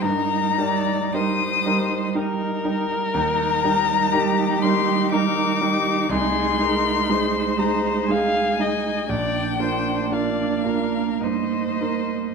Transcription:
X:1
M:3/4
L:1/8
Q:1/4=60
K:Eb
V:1 name="Violin"
b2 e'2 z2 | b3 c' d'2 | c'3 b a2 | g2 f2 e2 |]
V:2 name="Violin"
B d c2 B2- | B2 G2 B G | A B c2 f e | d c d B c2 |]
V:3 name="Grand piano"
G,, [G,EB] [G,EB] [G,EB] [G,EB] [G,EB] | E,, [G,EB] [G,EB] [G,EB] [G,EB] [G,EB] | C,, [A,EA] [A,EA] [A,EA] [A,EA] [A,EA] | B,,, [B,DF] [B,DF] [B,DF] G,, [B,EB] |]
V:4 name="Viola"
E6 | E6- | E6 | D4 E2 |]
V:5 name="Cello" clef=bass
G,6 | G,6 | A,6 | B,6 |]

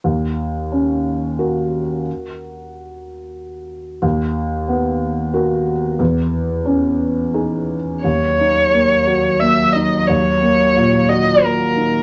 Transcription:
X:1
M:3/4
L:1/8
Q:1/4=90
K:D#phr
V:1 name="Violin"
z6 | z6 | z6 | z6 |
c4 e d | c3 d A2 |]
V:2 name="Felt piano"
D,,2 C2 [FA]2- | [FA]6 | D,,2 B,2 [FA]2 | E,,2 C2 [DG]2 |
D,, D A, F A, D | D,, A, A,, F A, D |]
V:3 name="Cello" clef=bass
z6 | z6 | z6 | z6 |
F,6- | F,6 |]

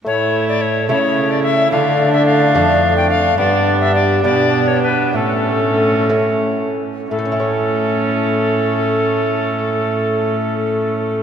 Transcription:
X:1
M:6/8
L:1/16
Q:3/8=65
K:Amix
V:1 name="Recorder"
c3 d c2 c3 d e2 | =f3 e f4- f g f2 | d3 e d2 d3 c B2 | A6 z6 |
A12- | A12 |]
V:2 name="Viola"
E6 E6 | D12 | D6 D6 | C8- C2 z2 |
C12- | C12 |]
V:3 name="Lute"
z6 [A,EA]6 | z6 [A,DA]6 | z6 [B,DG]6 | z6 [A,CE]6 |
[A,,A,CEc]12- | [A,,A,CEc]12 |]
V:4 name="Lute" clef=bass
A,,6 C,6 | D,6 =F,,6 | G,,6 B,,6 | A,,8- A,,2 z2 |
z12 | z12 |]
V:5 name="Bassoon"
A,6 A,6 | A,12 | B,6 B,6 | A,8- A,2 z2 |
A,12- | A,12 |]
V:6 name="Cello" clef=bass
A,,6 C,6 | D,6 =F,,6 | G,,6 B,,6 | A,,8- A,,2 z2 |
A,,12- | A,,12 |]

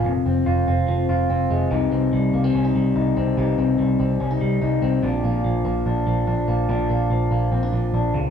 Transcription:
X:1
M:4/4
L:1/16
Q:1/4=145
K:Cphr
V:1 name="Clean electric guitar"
F,,2 C2 F2 C2 F,2 F2 C2 A,2 | [C,E]2 C2 G,2 B, C D E G,2 E2 C2 | [C,E]2 C2 G,2 C2 D E G,2 E2 C2 | [B,,=D]2 B,2 F,2 B,2 D2 F,2 D2 B,2 |
[B,,=D]2 B,2 F,2 B,2 C D F,2 D2 _D,2 |]
V:2 name="Picked electric bass" clef=bass
F,,,2 F,,,2 F,,,2 F,,,2 F,,,2 F,,,2 F,,,2 F,,,2 | C,,2 C,,2 C,,2 C,,2 C,,2 C,,2 C,,2 C,,2 | C,,2 C,,2 C,,2 C,,2 C,,2 C,,2 C,,2 C,,2 | B,,,2 B,,,2 B,,,2 B,,,2 B,,,2 B,,,2 B,,,2 B,,,2 |
B,,,2 B,,,2 B,,,2 B,,,2 B,,,2 B,,,2 B,,,2 D,,2 |]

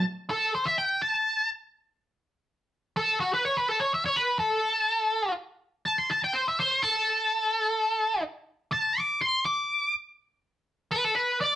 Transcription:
X:1
M:4/4
L:1/16
Q:1/4=124
K:D
V:1 name="Lead electric guitar"
z2 A2 =c e g2 a4 z4 | z8 A2 F B c B A c | e c B2 A8 z4 | a =c' a g =c e c2 A8- |
A4 z4 a2 d'2 =c'2 d'2- | d'2 z8 B A B2 d2 |]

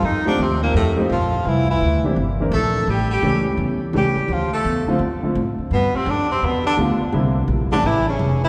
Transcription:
X:1
M:4/4
L:1/8
Q:"Swing" 1/4=169
K:Cmix
V:1 name="Tenor saxophone"
_E D C B, A, z F2 | E E2 z3 A2 | G G2 z3 G2 | F A2 z4 z |
=B, C D C B, D z2 | z3 D E ^C2 E |]
V:2 name="Grand piano"
z [F,A,C_EG]3 z [F,A,CEG] z2 | z3 [E,B,CDG] z [E,B,CDB] z2 | z2 [E,G,A,^CG]3 z [E,G,A,CG] z | z3 [D,F,A,CF] z [D,F,A,CF] z2 |
z6 [D,G,A,=B,F] z | [D,G,B,CE] z2 [E,G,A,_DG] z4 |]
V:3 name="Baritone saxophone" clef=bass
_E, D, C, B,, A,, z F,2 | E, E,2 z3 A,2 | G, G,2 z3 G,2 | F, A,2 z4 z |
=B,, C, D, C, B,, D, z2 | z3 D, E, ^C,2 E, |]
V:4 name="Upright bass" clef=bass
F,,2 _E,,2 F,,2 B,,,2 | C,,2 D,,2 G,,,2 B,,,2 | A,,,2 ^C,,2 E,,2 C,, z | D,,2 E,, z F,, z A,, z |
G,, z F,,2 E,,2 D,, z | C,,2 B,,, z A,,,2 F,,,2 |]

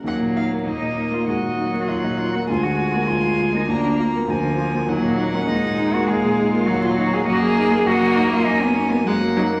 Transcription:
X:1
M:4/4
L:1/16
Q:1/4=100
K:Ebm
V:1 name="Violin"
g2 f2 e4 e4 g4 | a8 b4 a4 | g8 f8 | e4 e4 a4 g4 |]
V:2 name="Cello"
B,4 E3 F G4 F E F G | F G3 F3 E =D2 B, C B,4 | B,3 D E3 G A3 F G F G A | G A3 G3 F E C D C B,4 |]
V:3 name="Grand piano" clef=bass
E,, B,, E B, E,, B,, E B, E,, B,, E B, E,, B,, E B, | =D,, =D, F B, D,, D, F B, D,, D, F B, D,, D, F B, | E,, B,, E B, E,, B,, E B, E,, B,, E B, E,, B,, E B, | G,, G, E B, G,, G, E B, G,, G, E B, G,, G, E B, |]
V:4 name="Viola" clef=bass
G,4 B,4 A,2 G,6 | A,8 B,4 F,4 | G,4 A,8 G,4 | B,4 B,8 A,2 G,2 |]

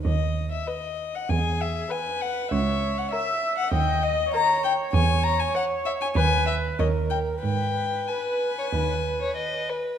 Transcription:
X:1
M:4/4
L:1/16
Q:1/4=97
K:G#m
V:1 name="Violin"
d3 e d3 f g2 e2 g2 f2 | e3 f e3 f =g2 d2 a2 g2 | g2 a g f2 e g g2 e2 d2 =g2 | =g4 ^g8- g2 z2 |]
V:2 name="Viola"
z8 G4 B4 | c4 e4 d4 c4- | c8 B4 A4 | B12- B2 z2 |]
V:3 name="Violin"
z4 B4 z4 B4 | z4 A4 z4 A4 | z4 c4 B4 c4 | z4 B3 c B3 c d2 B2 |]
V:4 name="Cello" clef=bass
D,,4 z4 E,,4 z4 | C,,4 z4 D,,4 z4 | E,,4 z4 D,,4 D,,4 | G,,4 z4 D,,4 z4 |]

